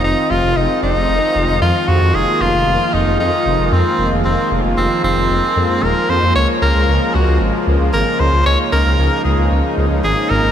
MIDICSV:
0, 0, Header, 1, 4, 480
1, 0, Start_track
1, 0, Key_signature, -4, "minor"
1, 0, Tempo, 526316
1, 35, Time_signature, 4, 2, 24, 8
1, 9592, End_track
2, 0, Start_track
2, 0, Title_t, "Tenor saxophone"
2, 0, Program_c, 0, 66
2, 35, Note_on_c, 0, 63, 98
2, 276, Note_on_c, 0, 65, 93
2, 289, Note_off_c, 0, 63, 0
2, 515, Note_on_c, 0, 63, 94
2, 529, Note_off_c, 0, 65, 0
2, 749, Note_off_c, 0, 63, 0
2, 755, Note_on_c, 0, 63, 99
2, 1438, Note_off_c, 0, 63, 0
2, 1475, Note_on_c, 0, 65, 96
2, 1714, Note_on_c, 0, 66, 92
2, 1727, Note_off_c, 0, 65, 0
2, 1955, Note_on_c, 0, 68, 101
2, 1969, Note_off_c, 0, 66, 0
2, 2195, Note_on_c, 0, 65, 99
2, 2208, Note_off_c, 0, 68, 0
2, 2674, Note_on_c, 0, 63, 87
2, 2688, Note_off_c, 0, 65, 0
2, 2909, Note_off_c, 0, 63, 0
2, 2915, Note_on_c, 0, 63, 95
2, 3393, Note_on_c, 0, 60, 88
2, 3407, Note_off_c, 0, 63, 0
2, 3732, Note_off_c, 0, 60, 0
2, 3875, Note_on_c, 0, 60, 78
2, 4098, Note_off_c, 0, 60, 0
2, 4355, Note_on_c, 0, 60, 84
2, 4578, Note_off_c, 0, 60, 0
2, 4597, Note_on_c, 0, 60, 89
2, 5317, Note_on_c, 0, 70, 99
2, 5331, Note_off_c, 0, 60, 0
2, 5558, Note_on_c, 0, 72, 103
2, 5571, Note_off_c, 0, 70, 0
2, 5792, Note_off_c, 0, 72, 0
2, 5797, Note_on_c, 0, 73, 106
2, 5905, Note_off_c, 0, 73, 0
2, 6038, Note_on_c, 0, 70, 111
2, 6516, Note_on_c, 0, 66, 90
2, 6529, Note_off_c, 0, 70, 0
2, 6755, Note_off_c, 0, 66, 0
2, 7236, Note_on_c, 0, 70, 95
2, 7476, Note_on_c, 0, 72, 100
2, 7490, Note_off_c, 0, 70, 0
2, 7710, Note_off_c, 0, 72, 0
2, 7715, Note_on_c, 0, 73, 112
2, 7823, Note_off_c, 0, 73, 0
2, 7954, Note_on_c, 0, 70, 105
2, 8401, Note_off_c, 0, 70, 0
2, 8434, Note_on_c, 0, 68, 75
2, 8658, Note_off_c, 0, 68, 0
2, 9153, Note_on_c, 0, 68, 101
2, 9394, Note_on_c, 0, 70, 103
2, 9408, Note_off_c, 0, 68, 0
2, 9592, Note_off_c, 0, 70, 0
2, 9592, End_track
3, 0, Start_track
3, 0, Title_t, "Supersaw synth"
3, 0, Program_c, 1, 81
3, 0, Note_on_c, 1, 51, 81
3, 0, Note_on_c, 1, 53, 76
3, 0, Note_on_c, 1, 56, 74
3, 0, Note_on_c, 1, 60, 74
3, 0, Note_on_c, 1, 65, 91
3, 1919, Note_off_c, 1, 60, 0
3, 1954, Note_on_c, 1, 58, 72
3, 5759, Note_off_c, 1, 51, 0
3, 5796, Note_on_c, 1, 49, 78
3, 7679, Note_off_c, 1, 65, 0
3, 7715, Note_on_c, 1, 63, 90
3, 9592, Note_off_c, 1, 49, 0
3, 9592, Note_off_c, 1, 53, 0
3, 9592, Note_off_c, 1, 56, 0
3, 9592, Note_off_c, 1, 58, 0
3, 9592, Note_off_c, 1, 63, 0
3, 9592, End_track
4, 0, Start_track
4, 0, Title_t, "Detuned saw bass"
4, 0, Program_c, 2, 39
4, 35, Note_on_c, 2, 29, 100
4, 128, Note_off_c, 2, 29, 0
4, 275, Note_on_c, 2, 29, 92
4, 368, Note_off_c, 2, 29, 0
4, 395, Note_on_c, 2, 29, 81
4, 488, Note_off_c, 2, 29, 0
4, 515, Note_on_c, 2, 29, 100
4, 608, Note_off_c, 2, 29, 0
4, 755, Note_on_c, 2, 29, 94
4, 848, Note_off_c, 2, 29, 0
4, 875, Note_on_c, 2, 29, 81
4, 968, Note_off_c, 2, 29, 0
4, 994, Note_on_c, 2, 29, 99
4, 1087, Note_off_c, 2, 29, 0
4, 1234, Note_on_c, 2, 29, 93
4, 1327, Note_off_c, 2, 29, 0
4, 1354, Note_on_c, 2, 29, 82
4, 1448, Note_off_c, 2, 29, 0
4, 1473, Note_on_c, 2, 41, 99
4, 1567, Note_off_c, 2, 41, 0
4, 1713, Note_on_c, 2, 41, 93
4, 1807, Note_off_c, 2, 41, 0
4, 1833, Note_on_c, 2, 41, 79
4, 1927, Note_off_c, 2, 41, 0
4, 1953, Note_on_c, 2, 29, 100
4, 2047, Note_off_c, 2, 29, 0
4, 2193, Note_on_c, 2, 29, 92
4, 2287, Note_off_c, 2, 29, 0
4, 2314, Note_on_c, 2, 29, 83
4, 2407, Note_off_c, 2, 29, 0
4, 2434, Note_on_c, 2, 29, 100
4, 2527, Note_off_c, 2, 29, 0
4, 2674, Note_on_c, 2, 29, 89
4, 2767, Note_off_c, 2, 29, 0
4, 2794, Note_on_c, 2, 29, 81
4, 2888, Note_off_c, 2, 29, 0
4, 2914, Note_on_c, 2, 41, 96
4, 3007, Note_off_c, 2, 41, 0
4, 3154, Note_on_c, 2, 29, 94
4, 3247, Note_off_c, 2, 29, 0
4, 3273, Note_on_c, 2, 29, 81
4, 3367, Note_off_c, 2, 29, 0
4, 3393, Note_on_c, 2, 41, 103
4, 3487, Note_off_c, 2, 41, 0
4, 3634, Note_on_c, 2, 29, 94
4, 3727, Note_off_c, 2, 29, 0
4, 3754, Note_on_c, 2, 29, 77
4, 3848, Note_off_c, 2, 29, 0
4, 3875, Note_on_c, 2, 29, 98
4, 3968, Note_off_c, 2, 29, 0
4, 4114, Note_on_c, 2, 29, 93
4, 4208, Note_off_c, 2, 29, 0
4, 4235, Note_on_c, 2, 29, 81
4, 4328, Note_off_c, 2, 29, 0
4, 4355, Note_on_c, 2, 29, 101
4, 4448, Note_off_c, 2, 29, 0
4, 4594, Note_on_c, 2, 29, 92
4, 4687, Note_off_c, 2, 29, 0
4, 4714, Note_on_c, 2, 29, 78
4, 4808, Note_off_c, 2, 29, 0
4, 4835, Note_on_c, 2, 29, 97
4, 4928, Note_off_c, 2, 29, 0
4, 5074, Note_on_c, 2, 41, 92
4, 5168, Note_off_c, 2, 41, 0
4, 5194, Note_on_c, 2, 41, 79
4, 5288, Note_off_c, 2, 41, 0
4, 5315, Note_on_c, 2, 27, 100
4, 5408, Note_off_c, 2, 27, 0
4, 5555, Note_on_c, 2, 41, 93
4, 5648, Note_off_c, 2, 41, 0
4, 5675, Note_on_c, 2, 41, 77
4, 5768, Note_off_c, 2, 41, 0
4, 5795, Note_on_c, 2, 37, 98
4, 5888, Note_off_c, 2, 37, 0
4, 6035, Note_on_c, 2, 37, 93
4, 6128, Note_off_c, 2, 37, 0
4, 6156, Note_on_c, 2, 37, 79
4, 6248, Note_off_c, 2, 37, 0
4, 6275, Note_on_c, 2, 37, 102
4, 6368, Note_off_c, 2, 37, 0
4, 6515, Note_on_c, 2, 37, 89
4, 6608, Note_off_c, 2, 37, 0
4, 6636, Note_on_c, 2, 37, 81
4, 6728, Note_off_c, 2, 37, 0
4, 6755, Note_on_c, 2, 32, 96
4, 6848, Note_off_c, 2, 32, 0
4, 6995, Note_on_c, 2, 37, 97
4, 7088, Note_off_c, 2, 37, 0
4, 7116, Note_on_c, 2, 37, 81
4, 7209, Note_off_c, 2, 37, 0
4, 7235, Note_on_c, 2, 32, 100
4, 7328, Note_off_c, 2, 32, 0
4, 7475, Note_on_c, 2, 37, 96
4, 7568, Note_off_c, 2, 37, 0
4, 7595, Note_on_c, 2, 37, 82
4, 7688, Note_off_c, 2, 37, 0
4, 7715, Note_on_c, 2, 37, 101
4, 7808, Note_off_c, 2, 37, 0
4, 7955, Note_on_c, 2, 37, 94
4, 8048, Note_off_c, 2, 37, 0
4, 8075, Note_on_c, 2, 37, 81
4, 8168, Note_off_c, 2, 37, 0
4, 8195, Note_on_c, 2, 37, 98
4, 8288, Note_off_c, 2, 37, 0
4, 8435, Note_on_c, 2, 37, 92
4, 8528, Note_off_c, 2, 37, 0
4, 8555, Note_on_c, 2, 37, 84
4, 8648, Note_off_c, 2, 37, 0
4, 8674, Note_on_c, 2, 37, 98
4, 8768, Note_off_c, 2, 37, 0
4, 8914, Note_on_c, 2, 37, 94
4, 9008, Note_off_c, 2, 37, 0
4, 9034, Note_on_c, 2, 37, 82
4, 9128, Note_off_c, 2, 37, 0
4, 9155, Note_on_c, 2, 32, 100
4, 9248, Note_off_c, 2, 32, 0
4, 9394, Note_on_c, 2, 32, 93
4, 9488, Note_off_c, 2, 32, 0
4, 9516, Note_on_c, 2, 32, 80
4, 9592, Note_off_c, 2, 32, 0
4, 9592, End_track
0, 0, End_of_file